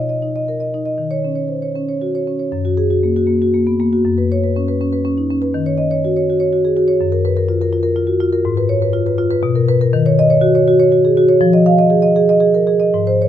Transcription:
marimba
Already playing: B2
0.09 D#5
0.22 D#4
0.36 D#5
0.48 A#4
0.60 D#5
0.74 D#4
0.86 D#5
0.98 D#3
1.11 C#5
1.25 C#4
1.35 C#5
1.48 C5
1.62 C#5
1.76 C#4
1.89 C#5
2.02 F#4
2.15 C#5
2.27 C#4
2.39 C#5
2.52 F#2
2.65 F#4
2.77 G#4
2.90 F#4
3.03 A#3
3.17 F#4
3.27 A#3
3.42 F#4
3.54 A#3
3.67 B3
3.80 A#3
3.93 F#4
4.05 F#2
4.18 B4
4.32 C#5
4.44 B4
4.56 C#4
4.68 B4
4.81 C#4
4.93 B4
5.05 C#4
5.18 D#4
5.31 C#4
5.42 B4
5.54 D#3
5.66 C#5
5.78 D#5
5.91 C#5
6.04 F#4
6.17 C#5
6.30 F#4
6.40 C#5
6.53 F#4
6.65 G#4
6.77 F#4
6.88 C#5
7.01 F#2
7.12 A#4
7.25 B4
7.37 A#4
7.49 F4
7.61 A#4
7.73 F4
7.83 A#4
7.96 F4
8.07 F#4
8.20 F4
8.33 A#4
8.45 G#2
8.57 B4
8.69 C#5
8.82 B4
8.93 F4
9.06 B4
9.18 F4
9.31 B4
9.43 B2
9.55 A#4
9.69 B4
9.81 A#4
9.93 D#3
10.06 C#5
10.19 D#5
10.30 C#5
10.41 F#4
10.55 C#5
10.68 F#4
10.80 C#5
10.92 F#4
11.05 G#4
11.17 F#4
11.29 C#5
11.41 F3
11.53 D#5
11.66 F5
11.79 D#5
11.90 G#4
12.02 D#5
12.16 G#4
12.29 D#5
12.40 G#4
12.54 A#4
12.67 G#4
12.80 D#5
12.94 G#2
13.07 C5
13.22 C#5

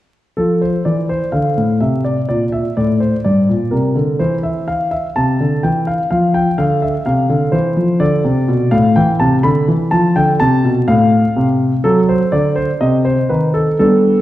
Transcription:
grand piano
0.37 F3 A4
0.61 C5
0.85 E3 D5
1.09 C5
1.32 D3 F5
1.57 A2
1.80 C3 E5
2.04 D5
2.29 A#2 D5
2.52 E5
2.77 A2 D5
3.00 C5
3.24 G2 D5
3.49 A#2
3.71 C3 A#4
3.96 D3
4.19 E3 C5
4.43 E5
4.68 F5
4.91 E5
5.16 C3 A5
5.40 D3
5.63 E3 G5
5.87 F5
6.11 F3 F5
6.34 G5
6.58 D3 F5
6.82 E5
7.06 C3 F5
7.29 D3
7.52 E3 C5
7.77 F3
8.00 D3 D5
8.24 C3
8.48 B2
8.71 A2 F5
8.96 E3 G5
9.20 C3 A5
9.43 D3 B5
9.68 E3
9.91 F3 A5
10.16 D3 G5
10.40 C3 A5
10.64 B2
10.88 A2 F5
11.36 C3
11.84 F#3 A4
12.09 C5
12.32 D3 D5
12.56 C5
12.81 C3 D#5
13.05 C5
13.29 D#3 B4
13.54 A4
13.79 G3 B3 D4 A4

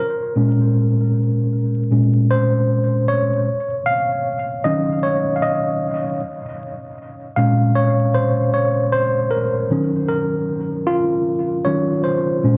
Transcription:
tine electric piano
Already playing: A#4
0.36 A#2 G#3 C#4
1.92 A#2 G#3 C#4
2.31 C5
3.08 C#5
3.86 F5
4.64 D#3 F#3 C#4 D#5
5.03 C#5
5.36 F5
5.42 D#5
7.36 A#2 G#3 C#4 F5
7.75 C#5
8.14 C5
8.54 C#5
8.92 C5
9.31 A#4
9.71 D#3 F#3 C#4
10.08 A#4
10.87 F4
11.64 D#3 F#3 C#4 C#5
12.04 C5
12.43 A#2 G#3 C#4

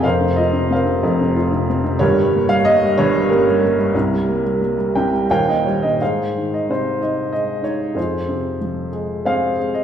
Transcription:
upright piano
0.03 F1 F2 A#4 C5 F5
0.20 C3
0.36 F4 D#5
0.53 C3
0.71 C4 A#4 C5 F5
0.86 C3
1.03 F1 F2
1.20 C3
1.36 F4
1.52 C3
1.70 C4
1.84 C3
1.99 G1 G2 G4 A#4 C#5
2.18 G3
2.35 A#3
2.48 G3 F5
2.64 A#3 D#5
2.83 G3
2.98 G1 G2 C#5
3.15 G3
3.29 A#3 C#4 G4 A#4
3.48 G3
3.63 A#3
3.79 G3
3.94 C2 C3
4.13 G3
4.28 A#3
4.44 G3
4.60 A#3
4.77 G3
4.95 C2 C3 G5
5.12 G3
5.30 D#1 D#2 A#4 C#5 F5 G5
5.49 A#2 D#5
5.65 G3 C#5
5.83 A#2 D#5
6.01 G#2 G#4 C5 F5
6.38 D#3
6.54 D#5
6.69 C3 C5
7.01 D#4 D#5
7.31 G#3 D#5
7.62 D#4 C#5
7.95 F2 C5
7.99 F4 G#4
8.29 C3
8.61 F3
8.92 G#3
9.25 C4 G#4 C5 F5
9.58 G#3
9.74 D#5

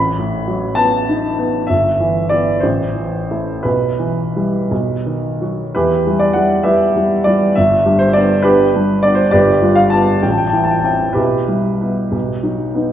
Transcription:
upright piano
Already playing: A1 B5
0.18 A2
0.47 F#3
0.75 B3 A5
1.09 D#4
1.38 B3
1.67 G1 E5
2.00 E3
2.29 B3 E4 D5
2.60 A1 C5
2.95 E3
3.31 A3 E4
3.63 B1 B4
3.99 E3
4.36 G3 E4
4.71 B1
5.06 D#3
5.41 F#3 F#4
5.75 E2 E4 G4 B4
6.07 G3 E4
6.19 D5
6.33 G3 E4 F#5
6.63 G3 E4 G4 B4 E5
6.96 G3 E4
7.24 G3 E4 D5
7.55 G1 E5
7.86 G3 D4
7.99 C5
8.13 B3 D4 D5
8.42 B3 D4 G4 B4
8.75 G3 D4
9.03 B3 D4 D5
9.15 C5
9.31 G1 G4 B4 D5
9.62 G3 F4
9.76 F5
9.90 B3 F4 A5
10.22 A1 G5
10.31 A5
10.38 G5
10.47 A5
10.53 E3 E4 G5
10.64 A5
10.71 G5
10.79 A5
10.84 C4 E4 G5
11.13 B1 E4 G4 B4
11.48 G3 E4
11.81 B3 E4
12.12 B1
12.43 F#3 D#4
12.74 B3 D#4

